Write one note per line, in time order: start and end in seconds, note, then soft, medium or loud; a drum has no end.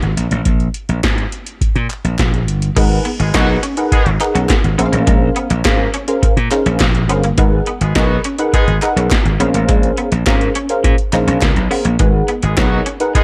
0.02 0.13 G#1 medium
0.02 closed hi-hat soft
0.17 0.28 A#1 medium
0.17 closed hi-hat medium
0.31 0.42 A1 medium
0.31 closed hi-hat medium
0.45 0.67 A#1 loud
0.45 kick loud
0.45 closed hi-hat medium
0.60 closed hi-hat soft
0.74 closed hi-hat medium
0.89 1.00 A#1 medium
0.89 closed hi-hat soft
1.03 1.25 G#2 medium
1.03 kick loud
1.03 snare loud
1.03 clap medium
1.03 closed hi-hat medium
1.18 closed hi-hat soft
1.32 closed hi-hat medium
1.47 closed hi-hat medium
1.61 muted slap bass stroke soft
1.61 kick loud
1.61 closed hi-hat medium
1.76 1.86 A#2 medium
1.76 closed hi-hat soft
1.90 clap medium
1.90 closed hi-hat medium
2.04 2.15 A#1 medium
2.04 closed hi-hat soft
2.19 2.48 A#1 medium
2.19 kick loud
2.19 snare loud
2.19 clap medium
2.19 closed hi-hat loud
2.34 closed hi-hat soft
2.48 2.69 G1 medium
2.48 closed hi-hat medium
2.62 closed hi-hat medium
2.76 2.98 G#1 loud
2.76 2.88 G#3 medium
2.76 3.10 D#4 medium
2.76 3.10 G#4 medium
2.76 3.10 A#4 medium
2.76 3.10 B4 medium
2.76 3.10 F#5 loud
2.76 kick loud
2.76 closed hi-hat loud
2.76 crash loud
3.05 3.16 B3 medium
3.05 closed hi-hat medium
3.19 3.30 G#1 loud
3.19 3.31 G#3 medium
3.19 3.31 B3 medium
3.19 3.31 D#4 medium
3.19 3.31 G#4 medium
3.19 muted clean electric guitar stroke soft
3.19 closed hi-hat medium
3.34 3.56 B1 loud
3.34 3.57 F#3 loud
3.34 3.57 B3 loud
3.34 3.59 D#4 medium
3.34 3.57 D#4 loud
3.34 3.57 F#4 loud
3.34 3.59 G#4 medium
3.34 3.60 A#4 medium
3.34 3.60 B4 medium
3.34 3.60 F#5 loud
3.34 kick loud
3.34 snare loud
3.34 clap loud
3.34 closed hi-hat loud
3.63 3.74 C#4 medium
3.63 closed hi-hat medium
3.77 4.03 D#4 medium
3.77 4.03 G#4 medium
3.77 4.03 A#4 medium
3.77 4.03 B4 medium
3.77 4.03 F#5 medium
3.77 closed hi-hat medium
3.92 4.15 G#3 loud
3.92 4.15 B3 loud
3.92 4.15 D#4 loud
3.92 4.15 G#4 loud
3.92 muted clean electric guitar stroke soft
3.92 kick loud
3.92 closed hi-hat loud
4.06 4.17 G#1 medium
4.06 closed hi-hat soft
4.20 4.54 D#4 medium
4.20 4.32 D#4 medium
4.20 4.54 G#4 medium
4.20 4.54 A#4 medium
4.20 4.54 B4 medium
4.20 4.55 F#5 medium
4.20 clap medium
4.20 closed hi-hat medium
4.35 4.46 B1 medium
4.35 4.46 C#4 medium
4.35 closed hi-hat medium
4.49 muted clean electric guitar stroke soft
4.49 kick loud
4.49 snare loud
4.49 clap medium
4.49 closed hi-hat loud
4.64 4.75 G#1 medium
4.64 closed hi-hat soft
4.78 4.89 A#1 loud
4.78 4.89 B3 medium
4.78 5.47 C#4 loud
4.78 5.48 G#4 medium
4.78 5.48 A#4 medium
4.78 5.48 C5 medium
4.78 4.85 E5 medium
4.78 closed hi-hat medium
4.85 5.51 F5 loud
4.92 5.04 A1 loud
4.92 5.04 A#3 medium
4.92 closed hi-hat medium
5.07 5.29 A#1 loud
5.07 5.18 G#3 loud
5.07 kick loud
5.07 closed hi-hat loud
5.36 5.47 B3 medium
5.36 closed hi-hat medium
5.50 5.61 A#1 loud
5.50 muted clean electric guitar stroke medium
5.50 closed hi-hat medium
5.65 5.87 G#2 loud
5.65 5.90 C#4 medium
5.65 5.90 G#4 medium
5.65 5.90 A#4 medium
5.65 5.90 C5 medium
5.65 5.90 F5 medium
5.65 kick loud
5.65 snare loud
5.65 clap loud
5.65 closed hi-hat loud
5.94 6.05 C#4 medium
5.94 closed hi-hat medium
6.08 6.33 C#4 medium
6.08 6.33 G#4 medium
6.08 6.33 A#4 medium
6.08 6.33 C5 medium
6.08 6.34 F5 loud
6.08 closed hi-hat medium
6.23 muted slap bass stroke medium
6.23 muted clean electric guitar stroke soft
6.23 kick loud
6.23 closed hi-hat loud
6.37 6.48 A#2 loud
6.37 closed hi-hat soft
6.51 6.85 C#4 medium
6.51 6.62 D#4 medium
6.51 6.85 G#4 medium
6.51 6.85 A#4 medium
6.51 6.85 C5 medium
6.51 6.85 F5 loud
6.51 clap medium
6.51 closed hi-hat medium
6.66 6.77 A#1 medium
6.66 6.77 C#4 medium
6.66 closed hi-hat medium
6.80 7.09 A#1 loud
6.80 muted clean electric guitar stroke soft
6.80 kick loud
6.80 snare loud
6.80 clap medium
6.80 closed hi-hat loud
6.95 closed hi-hat soft
7.09 7.31 G1 medium
7.09 7.20 B3 medium
7.09 7.23 C#4 medium
7.09 7.23 G#4 medium
7.09 7.23 A#4 medium
7.09 7.23 C5 medium
7.09 7.24 F5 loud
7.09 closed hi-hat medium
7.23 7.35 A#3 medium
7.23 closed hi-hat medium
7.38 7.60 G#1 loud
7.38 7.49 G#3 loud
7.38 7.71 D#4 medium
7.38 7.72 G#4 medium
7.38 7.72 A#4 medium
7.38 7.72 B4 medium
7.38 7.72 F#5 medium
7.38 kick loud
7.38 closed hi-hat loud
7.66 7.78 B3 medium
7.66 closed hi-hat medium
7.81 7.92 G#1 loud
7.81 7.93 G#3 medium
7.81 7.93 B3 medium
7.81 7.93 D#4 medium
7.81 7.93 G#4 medium
7.81 muted clean electric guitar stroke soft
7.81 closed hi-hat medium
7.95 8.17 B1 loud
7.95 8.19 F#3 loud
7.95 8.19 B3 loud
7.95 8.21 D#4 medium
7.95 8.19 D#4 loud
7.95 8.19 F#4 loud
7.95 8.21 G#4 medium
7.95 8.21 A#4 medium
7.95 8.21 B4 medium
7.95 8.21 D#5 medium
7.95 kick loud
7.95 snare loud
7.95 clap loud
7.95 closed hi-hat medium
8.24 8.36 C#4 medium
8.24 closed hi-hat medium
8.38 8.64 D#4 medium
8.38 8.64 G#4 medium
8.38 8.64 A#4 medium
8.38 8.64 B4 medium
8.38 8.64 F#5 loud
8.38 closed hi-hat medium
8.53 8.76 G#3 loud
8.53 8.76 B3 loud
8.53 8.76 D#4 loud
8.53 8.76 G#4 loud
8.53 muted clean electric guitar stroke soft
8.53 kick loud
8.53 closed hi-hat loud
8.67 8.78 G#1 medium
8.67 closed hi-hat soft
8.82 9.16 D#4 medium
8.82 8.93 D#4 medium
8.82 9.16 G#4 medium
8.82 9.16 A#4 medium
8.82 9.16 B4 medium
8.82 9.16 F#5 loud
8.82 clap medium
8.82 closed hi-hat medium
8.96 9.07 B1 medium
8.96 9.08 C#4 medium
8.96 closed hi-hat medium
9.11 muted clean electric guitar stroke soft
9.11 kick loud
9.11 snare loud
9.11 clap medium
9.11 closed hi-hat loud
9.25 9.36 G#1 medium
9.25 closed hi-hat soft
9.40 9.51 A#1 loud
9.40 9.51 B3 medium
9.40 10.09 C#4 loud
9.40 10.09 G#4 medium
9.40 10.09 A#4 medium
9.40 10.09 C5 medium
9.40 10.09 F5 loud
9.40 closed hi-hat medium
9.54 9.65 A1 medium
9.54 9.65 A#3 medium
9.54 closed hi-hat medium
9.69 9.90 A#1 loud
9.69 9.80 G#3 loud
9.69 kick loud
9.69 closed hi-hat loud
9.83 closed hi-hat soft
9.97 10.09 B3 medium
9.97 closed hi-hat medium
10.12 10.23 A#1 loud
10.12 muted clean electric guitar stroke soft
10.12 closed hi-hat medium
10.26 10.48 G#2 medium
10.26 10.52 C#4 medium
10.26 10.52 G#4 medium
10.26 10.52 A#4 medium
10.26 10.52 C5 medium
10.26 10.52 F5 medium
10.26 kick loud
10.26 snare loud
10.26 clap loud
10.26 closed hi-hat loud
10.41 closed hi-hat soft
10.55 10.66 C#4 medium
10.55 closed hi-hat medium
10.69 10.95 C#4 medium
10.69 10.95 G#4 medium
10.69 10.95 A#4 medium
10.69 10.95 C5 medium
10.69 10.95 F5 loud
10.69 closed hi-hat medium
10.84 10.95 A#2 loud
10.84 muted clean electric guitar stroke soft
10.84 kick loud
10.84 closed hi-hat loud
10.98 closed hi-hat soft
11.13 11.24 A#1 medium
11.13 11.46 C#4 medium
11.13 11.24 D#4 medium
11.13 11.47 G#4 medium
11.13 11.47 A#4 medium
11.13 11.47 C5 medium
11.13 11.47 F5 loud
11.13 clap medium
11.13 closed hi-hat medium
11.27 11.38 A#1 medium
11.27 11.39 C#4 medium
11.27 closed hi-hat medium
11.42 11.53 C#2 loud
11.42 muted clean electric guitar stroke soft
11.42 kick loud
11.42 snare loud
11.42 clap medium
11.42 closed hi-hat loud
11.56 11.67 B1 loud
11.56 closed hi-hat soft
11.70 11.82 B3 medium
11.70 11.84 C#4 medium
11.70 11.84 G#4 medium
11.70 11.85 A#4 medium
11.70 11.85 C5 medium
11.70 11.85 F5 medium
11.70 open hi-hat medium
11.85 11.96 A#1 medium
11.85 11.96 A#3 medium
11.85 closed hi-hat medium
11.99 12.21 G#1 loud
11.99 12.11 G#3 loud
11.99 12.33 D#4 medium
11.99 12.33 G#4 medium
11.99 12.33 A#4 medium
11.99 12.33 B4 medium
11.99 12.33 F#5 loud
11.99 kick loud
11.99 closed hi-hat loud
12.28 12.39 B3 medium
12.28 closed hi-hat medium
12.43 12.54 G#1 loud
12.43 12.54 G#3 medium
12.43 12.54 B3 medium
12.43 12.54 D#4 medium
12.43 12.54 G#4 medium
12.43 muted clean electric guitar stroke soft
12.43 closed hi-hat medium
12.57 12.79 B1 loud
12.57 12.80 F#3 loud
12.57 12.80 B3 loud
12.57 12.80 D#4 loud
12.57 12.82 D#4 medium
12.57 12.80 F#4 loud
12.57 12.82 G#4 medium
12.57 12.83 A#4 medium
12.57 12.83 B4 medium
12.57 12.83 C#5 medium
12.57 kick loud
12.57 snare loud
12.57 clap loud
12.57 closed hi-hat loud
12.86 12.97 C#4 medium
12.86 closed hi-hat medium
13.00 13.24 D#4 medium
13.00 13.24 G#4 medium
13.00 13.24 A#4 medium
13.00 13.24 B4 medium
13.00 13.24 F#5 loud
13.00 closed hi-hat medium
13.14 13.24 G#3 loud
13.14 13.24 B3 loud
13.14 13.24 D#4 loud
13.14 13.24 G#4 loud
13.14 muted clean electric guitar stroke soft
13.14 kick loud
13.14 closed hi-hat loud